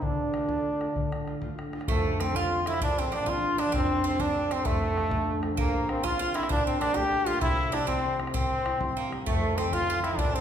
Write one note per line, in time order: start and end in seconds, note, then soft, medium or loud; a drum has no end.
0.00 0.95 D3 medium
0.00 0.39 A#3 medium
0.00 2.21 C4 soft
0.00 0.33 D4 soft
0.00 1.59 D4 medium
0.00 0.40 E4 soft
0.00 bodhran medium
0.20 bodhran soft
0.33 0.48 A3 soft
0.33 0.49 D4 soft
0.33 0.49 F4 soft
0.33 bodhran soft
0.48 0.79 A3 soft
0.48 0.80 D4 soft
0.48 0.80 F4 soft
0.48 bodhran medium
0.79 1.27 A3 soft
0.79 1.27 D4 soft
0.79 1.28 F4 soft
0.79 bodhran soft
0.96 1.93 D3 medium
0.96 bodhran medium
1.12 bodhran medium
1.27 1.42 A3 soft
1.27 1.43 D4 soft
1.27 1.42 F4 soft
1.27 bodhran soft
1.42 1.73 A3 soft
1.42 1.74 D4 soft
1.42 1.75 F4 medium
1.42 bodhran medium
1.59 bodhran medium
1.73 2.20 A3 soft
1.73 3.13 D4 soft
1.73 4.27 F4 medium
1.73 bodhran soft
1.81 bodhran medium
1.88 2.85 F1 medium
1.88 2.85 F2 medium
1.88 2.17 A3 medium
1.88 2.23 A3 medium
1.88 bodhran loud
1.96 bodhran soft
2.20 2.34 F3 soft
2.20 2.35 A3 soft
2.20 2.34 C4 medium
2.20 2.36 C4 soft
2.20 2.38 C4 medium
2.20 bodhran medium
2.35 2.65 F3 soft
2.35 2.66 A3 soft
2.35 2.67 C4 soft
2.35 2.64 F4 medium
2.35 2.63 F4 loud
2.35 bodhran medium
2.63 2.85 F3 soft
2.63 2.87 A3 soft
2.63 2.69 F4 medium
2.63 bodhran medium
2.67 4.05 C4 medium
2.67 2.80 E4 medium
2.67 2.81 E4 loud
2.74 bodhran medium
2.81 3.78 A#1 medium
2.81 3.78 A#2 medium
2.81 2.97 D4 medium
2.81 3.01 D4 loud
2.81 bodhran medium
2.98 3.13 C4 medium
2.98 bodhran soft
3.12 3.26 F3 soft
3.12 3.27 A#3 soft
3.12 3.26 D4 medium
3.12 3.28 D4 medium
3.12 3.31 D4 medium
3.12 bodhran medium
3.26 3.57 F3 medium
3.26 3.58 A#3 medium
3.26 3.59 D4 medium
3.26 3.58 F4 medium
3.26 3.61 F4 loud
3.26 bodhran medium
3.44 bodhran soft
3.58 3.78 F3 medium
3.58 4.11 A#3 medium
3.58 3.74 D4 medium
3.58 4.99 D4 medium
3.58 3.74 D4 loud
3.58 bodhran medium
3.72 4.64 F1 medium
3.72 4.65 F2 medium
3.72 4.02 C4 medium
3.72 4.04 C4 loud
3.72 bodhran medium
3.82 bodhran soft
4.04 4.18 F3 soft
4.04 4.19 A3 soft
4.04 4.18 C4 medium
4.04 4.20 C4 soft
4.04 4.22 C4 loud
4.19 4.50 F3 soft
4.19 4.51 A3 soft
4.19 4.52 C4 medium
4.19 4.49 D4 medium
4.19 4.54 D4 loud
4.19 bodhran medium
4.51 4.70 F3 medium
4.51 4.98 A3 soft
4.51 4.64 C4 medium
4.51 5.89 C4 medium
4.51 4.68 C4 loud
4.51 bodhran medium
4.65 5.63 F1 medium
4.65 5.63 F2 medium
4.65 5.39 A3 medium
4.65 5.43 A3 loud
4.65 bodhran medium
4.82 bodhran soft
4.97 5.11 F3 medium
4.97 5.13 A3 soft
4.97 5.13 D4 medium
4.97 bodhran medium
5.11 5.42 F3 medium
5.11 5.43 A3 soft
5.11 5.44 D4 medium
5.11 bodhran loud
5.28 bodhran soft
5.43 5.63 F3 medium
5.43 5.63 A3 soft
5.43 5.89 D4 medium
5.43 bodhran medium
5.57 6.49 A#1 medium
5.57 6.49 A#2 medium
5.57 6.00 A#3 medium
5.57 5.92 A#3 loud
5.57 bodhran medium
5.66 bodhran soft
5.88 6.03 A#3 soft
5.88 6.03 C4 soft
5.88 6.06 C4 loud
5.88 6.04 D4 medium
5.88 bodhran medium
6.03 6.35 A#3 soft
6.03 6.35 C4 soft
6.03 6.36 D4 soft
6.03 6.18 F4 loud
6.03 6.37 F4 loud
6.03 bodhran loud
6.19 6.34 F4 loud
6.34 6.81 A#3 medium
6.34 7.74 C4 soft
6.34 9.16 D4 medium
6.34 6.49 E4 medium
6.34 6.50 E4 loud
6.34 bodhran medium
6.43 bodhran medium
6.49 7.47 A#1 medium
6.49 7.47 A#2 medium
6.49 6.65 D4 medium
6.49 6.65 D4 loud
6.49 bodhran medium
6.66 6.80 C4 medium
6.66 bodhran soft
6.81 6.95 G3 medium
6.81 6.96 A3 medium
6.81 6.97 A#3 medium
6.81 6.97 D4 loud
6.81 6.94 D4 medium
6.81 bodhran medium
6.94 7.26 G3 medium
6.94 7.27 A3 soft
6.94 7.27 A#3 medium
6.94 7.26 G4 medium
6.94 7.29 G4 loud
6.94 bodhran medium
7.13 bodhran soft
7.26 7.47 G3 medium
7.26 9.57 A3 soft
7.26 9.63 A#3 medium
7.26 7.40 F4 medium
7.26 7.41 F4 loud
7.26 bodhran medium
7.41 8.33 C2 medium
7.41 8.33 C3 medium
7.41 7.71 E4 medium
7.41 7.76 E4 loud
7.41 bodhran loud
7.50 bodhran soft
7.72 7.87 G3 soft
7.72 7.88 C4 soft
7.72 7.86 D4 medium
7.72 7.88 D4 loud
7.72 7.89 E4 medium
7.72 bodhran medium
7.87 8.18 G3 soft
7.87 8.16 C4 medium
7.87 8.17 C4 loud
7.87 8.19 C4 soft
7.87 8.19 E4 medium
7.87 bodhran loud
8.19 8.64 G3 soft
8.19 8.65 C4 medium
8.19 8.66 E4 medium
8.19 bodhran medium
8.27 bodhran medium
8.33 9.31 C2 medium
8.33 9.31 C3 medium
8.33 9.07 C4 loud
8.33 8.92 C4 medium
8.33 bodhran medium
8.51 bodhran soft
8.65 8.79 G3 medium
8.65 8.80 C4 soft
8.65 8.81 E4 medium
8.65 bodhran medium
8.80 9.10 G3 medium
8.80 9.11 C4 soft
8.80 9.12 E4 medium
8.80 bodhran medium
8.97 9.10 A#3 medium
8.97 bodhran soft
9.11 9.31 G3 medium
9.11 9.58 C4 soft
9.11 9.33 E4 medium
9.11 bodhran medium
9.26 10.22 F1 medium
9.26 10.22 F2 medium
9.26 9.57 A3 medium
9.26 9.61 A3 medium
9.26 bodhran medium
9.36 bodhran soft
9.57 9.70 F3 soft
9.57 9.72 A3 soft
9.57 9.71 C4 medium
9.57 9.73 C4 soft
9.57 9.75 C4 medium
9.57 bodhran medium
9.72 10.01 F3 soft
9.72 10.02 A3 soft
9.72 10.03 C4 soft
9.72 9.88 F4 medium
9.72 10.03 F4 loud
9.72 bodhran medium
9.90 10.03 F4 medium
10.02 10.22 F3 medium
10.02 10.24 A3 soft
10.02 10.41 C4 soft
10.02 10.19 E4 loud
10.02 10.18 E4 medium
10.02 bodhran medium
10.11 bodhran medium
10.18 10.41 A#1 medium
10.18 10.41 A#2 medium
10.18 10.36 D4 loud
10.18 10.33 D4 medium
10.18 bodhran medium
10.35 10.41 C4 medium
10.35 bodhran soft